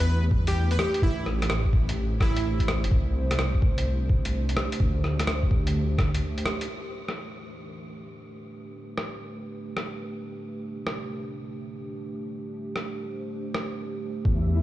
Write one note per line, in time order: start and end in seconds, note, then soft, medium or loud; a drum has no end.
0.00 0.78 E2 loud
0.00 1.01 A3 medium
0.00 2.91 D4 medium
0.00 2.91 G4 medium
0.00 1.02 B4 medium
0.00 0.25 B4 medium
0.31 kick loud
0.47 0.71 G4 medium
0.47 closed hi-hat medium
0.71 0.78 B4 medium
0.71 closed hi-hat soft
0.79 1.01 G4 medium
0.79 cross-stick loud
0.94 closed hi-hat medium
1.02 1.72 A1 loud
1.02 14.62 A3 medium
1.02 1.28 E4 loud
1.02 kick loud
1.26 cross-stick soft
1.42 cross-stick medium
1.42 closed hi-hat medium
1.50 cross-stick loud
1.65 kick medium
1.73 2.20 A1 loud
1.73 kick loud
1.89 6.69 C5 medium
1.89 closed hi-hat medium
2.20 2.85 A1 loud
2.20 2.69 E4 medium
2.20 kick loud
2.20 cross-stick medium
2.36 closed hi-hat medium
2.60 kick medium
2.60 closed hi-hat soft
2.68 cross-stick loud
2.83 2.91 E1 loud
2.83 closed hi-hat medium
2.91 3.62 C2 loud
2.91 kick loud
3.31 cross-stick medium
3.31 closed hi-hat medium
3.39 cross-stick loud
3.49 14.62 D4 medium
3.54 kick medium
3.62 4.56 C2 loud
3.62 kick loud
3.78 14.62 G4 medium
3.78 closed hi-hat medium
4.09 kick loud
4.25 closed hi-hat medium
4.49 closed hi-hat soft
4.57 cross-stick loud
4.72 closed hi-hat medium
4.80 5.50 D2 loud
4.80 kick loud
5.04 cross-stick soft
5.19 cross-stick medium
5.19 closed hi-hat medium
5.27 cross-stick loud
5.43 kick medium
5.51 6.22 D2 loud
5.51 kick loud
5.67 closed hi-hat medium
5.98 kick loud
5.98 cross-stick medium
6.15 closed hi-hat medium
6.38 closed hi-hat soft
6.46 cross-stick loud
6.61 closed hi-hat medium
6.69 8.58 E3 medium
7.08 cross-stick medium
7.57 12.36 B4 medium
8.98 cross-stick medium
9.77 cross-stick medium
10.47 12.36 C3 medium
10.87 cross-stick medium
12.76 cross-stick medium
12.82 14.25 C5 medium
13.54 cross-stick medium
14.25 14.62 E2 loud
14.25 14.62 E4 medium
14.25 14.62 E5 medium
14.25 kick loud